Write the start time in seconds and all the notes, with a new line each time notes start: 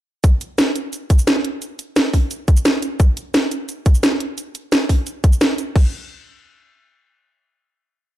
0.24 kick, closed hi-hat, cabasa
0.41 closed hi-hat, cabasa
0.58 snare, closed hi-hat, cabasa
0.76 closed hi-hat, cabasa
0.93 closed hi-hat, cabasa
1.10 kick, closed hi-hat, cabasa
1.19 cabasa
1.27 snare, closed hi-hat, cabasa
1.36 snare
1.45 closed hi-hat
1.62 closed hi-hat, cabasa
1.79 closed hi-hat, cabasa
1.96 snare, closed hi-hat, cabasa
2.13 kick, open hi-hat, cabasa
2.31 closed hi-hat, cabasa
2.48 kick, closed hi-hat, cabasa
2.57 cabasa
2.65 snare, closed hi-hat, cabasa
2.82 closed hi-hat, cabasa
3.00 kick, closed hi-hat, cabasa
3.17 closed hi-hat, cabasa
3.34 snare, closed hi-hat, cabasa
3.51 closed hi-hat, cabasa
3.69 closed hi-hat, cabasa
3.86 kick, closed hi-hat, cabasa
3.95 cabasa
4.03 snare, closed hi-hat, cabasa
4.12 snare
4.20 closed hi-hat
4.38 closed hi-hat, cabasa
4.55 closed hi-hat, cabasa
4.72 snare, closed hi-hat, cabasa
4.89 kick, open hi-hat, cabasa
5.07 closed hi-hat, cabasa
5.24 kick, closed hi-hat, cabasa
5.32 cabasa
5.41 snare, closed hi-hat, cabasa
5.58 closed hi-hat, cabasa
5.76 kick, crash